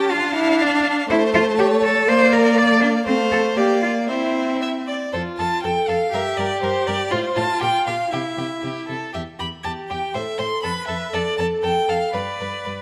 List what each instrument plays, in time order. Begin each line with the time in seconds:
Already playing: viola C#4, cello G4, violin A5
0.11 viola D4, cello F4, violin F5
0.36 cello E4
0.62 cello D4
1.09 viola A3, cello E4, violin C5 A5
1.34 cello F4
1.58 cello G4, violin C#5
1.84 cello A4
2.08 viola A#3, cello C5, violin D5 F5
2.33 cello A#4
2.58 cello D5
2.82 cello D4
3.06 viola A3, cello C4, violin C5 F5
3.32 cello A4
3.56 viola A#3, cello G4, violin D5 F5
3.82 cello F4
4.08 viola C4, cello E4, violin C5 E5
4.62 violin E5
4.87 violin D5
5.12 cello F2, viola F4, violin A4 C5
5.37 cello F2, violin A4 A5
5.63 cello F2, violin A4 G5, viola A4
5.88 cello F2, violin A4 F5
6.13 cello G2, viola G4, violin A#4 E5
6.38 cello G2, violin A#4 D5
6.62 cello G2, violin A#4 C5
6.87 cello G2, violin A#4 D5
7.11 cello A2, violin F4 C5, viola F4
7.36 cello A2, violin F4 A5
7.61 cello A#2, violin G4 G5
7.87 cello A#2, violin G4 F5
8.11 cello C3, viola E4, violin G4 E5
8.37 cello C3, violin G4
8.62 cello C3, violin G4
8.88 cello C3, violin A4
9.14 cello E2, violin G4 E5
9.39 cello E2, violin G4 B5
9.64 cello E2, violin G4 A5, viola G4
9.89 cello E2, violin G4 G5
10.14 cello A2, viola A4, violin C5 E5
10.38 cello A2, violin C5 C6
10.63 cello F2, violin A4 B5, viola B4
10.87 cello F2, violin A4 E5
11.13 cello F2, viola A4, violin A4 D5
11.37 cello F2, violin A4 A5
11.63 cello F2, violin A4 G5
11.88 cello F2, violin A4 F5
12.14 cello G2, violin B4 D5, viola B4
12.40 cello G2, violin B4
12.65 cello G2, violin B4